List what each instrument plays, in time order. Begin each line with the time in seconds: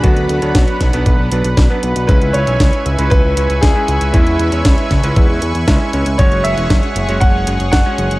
Already playing: analog synth pad D4 B4 F#5 B5
0.02 analog synth bass D2, electric grand piano F#3 B3 D4 B4, grand piano F#4, kick, closed hi-hat
0.17 analog synth bass D2, closed hi-hat
0.29 analog synth bass D2, closed hi-hat
0.42 analog synth bass D2, electric grand piano F#3 B3 D4 C#5, closed hi-hat
0.55 analog synth bass B1, kick, snare, closed hi-hat
0.68 closed hi-hat
0.81 analog synth bass B1, kick, snare, closed hi-hat
0.93 analog synth bass B1, electric grand piano F#3 B3 D4 B4, closed hi-hat
1.06 analog synth bass B1, kick, closed hi-hat
1.19 analog synth bass B1
1.32 analog synth bass B1, electric grand piano F#3 B3 D4 B4, closed hi-hat
1.45 analog synth bass B1, closed hi-hat
1.57 analog synth bass B1, kick, snare, closed hi-hat
1.70 electric grand piano F#3 B3 D4 B4
1.83 analog synth bass B1, closed hi-hat
1.96 analog synth bass B1, closed hi-hat
2.07 analog synth bass C#2, electric grand piano G#3 C#4 E4 B4, grand piano B4, analog synth pad E5 G#5 C#6, kick, closed hi-hat
2.22 analog synth bass C#2, closed hi-hat
2.33 analog synth bass C#2, grand piano C#5, closed hi-hat
2.47 analog synth bass B1, electric grand piano G#3 C#4 E4 C#5, closed hi-hat
2.60 analog synth bass C#2, kick, snare, closed hi-hat
2.73 closed hi-hat
2.86 analog synth bass C#2, closed hi-hat
2.99 analog synth bass C#2, electric grand piano G#3 C#4 E4 B4, closed hi-hat
3.10 analog synth bass C#2, grand piano B4, kick, closed hi-hat
3.25 analog synth bass C#2
3.37 analog synth bass C#2, electric grand piano G#3 C#4 E4 B4, closed hi-hat
3.50 analog synth bass C#2, closed hi-hat
3.61 analog synth bass C#2, grand piano G#4, kick, snare, closed hi-hat
3.76 electric grand piano G#3 C#4 E4 B4
3.88 analog synth bass C#2, closed hi-hat
4.01 analog synth bass C#2, closed hi-hat
4.13 analog synth bass E2, electric grand piano G#3 C#4 E4 B4, grand piano E4, kick, closed hi-hat
4.27 analog synth bass E2, closed hi-hat
4.39 analog synth bass E2, closed hi-hat
4.52 analog synth bass E2, electric grand piano G#3 C#4 E4 C#5, closed hi-hat
4.65 analog synth bass C#2, kick, snare, closed hi-hat
4.78 closed hi-hat
4.91 analog synth bass C#2, kick, snare, closed hi-hat
5.04 analog synth bass C#2, electric grand piano G#3 C#4 E4 B4, closed hi-hat
5.16 analog synth bass E2, kick, closed hi-hat
5.29 analog synth bass E2
5.42 analog synth bass E2, closed hi-hat
5.55 analog synth bass E2, closed hi-hat
5.68 analog synth bass C#2, electric grand piano G#3 C#4 E4 E5, kick, snare, closed hi-hat
5.93 analog synth bass C#2, electric grand piano G#3 C#4 E4 C#5, closed hi-hat
6.06 analog synth bass C#2, closed hi-hat
6.18 analog synth bass F#1, electric grand piano G#3 C#4 F#4 C#5, analog synth pad G#4 C#5 F#5, grand piano C#5, kick, closed hi-hat
6.32 analog synth bass F#1, closed hi-hat
6.44 analog synth bass F#1, grand piano E5, closed hi-hat
6.57 analog synth bass E1, electric grand piano G#3 C#4 F#4 E5, closed hi-hat
6.70 analog synth bass F#1, kick, snare, closed hi-hat
6.83 closed hi-hat
6.96 analog synth bass F#1, closed hi-hat
7.09 analog synth bass F#1, electric grand piano G#3 C#4 F#4 C#5, closed hi-hat
7.20 analog synth bass F#1, grand piano F#5, kick, closed hi-hat
7.34 analog synth bass F#1
7.47 analog synth bass F#1, electric grand piano G#3 C#4 F#4 C#5, closed hi-hat
7.60 analog synth bass F#1, closed hi-hat
7.72 analog synth bass F#1, grand piano F#5, kick, snare, closed hi-hat
7.86 electric grand piano G#3 C#4 F#4 C#5
7.98 analog synth bass F#1, closed hi-hat
8.11 analog synth bass F#1, closed hi-hat